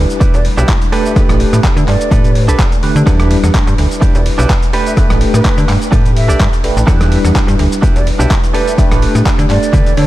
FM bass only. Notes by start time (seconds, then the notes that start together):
0.21 E1
0.34 E1
0.58 B1
1.16 A1
1.29 A1
1.53 A2
1.77 D3
1.88 G2
2.11 A2
2.48 A1
2.83 D3
2.96 D3
3.07 E2
3.44 E2
3.67 G2
3.78 D2
4.02 E1
4.15 E1
4.39 B1
4.97 A1
5.10 A1
5.34 A2
5.58 D3
5.69 G2
5.92 A2
6.29 A1
6.40 G2
6.64 A1
6.77 A1
6.88 E2
7.25 E2
7.48 G2
7.59 D2
7.83 E1
7.96 E1
8.20 B1
8.78 A1
8.91 A1
9.15 A2
9.39 D3
9.50 G2
9.73 D3
9.87 D3
9.97 D3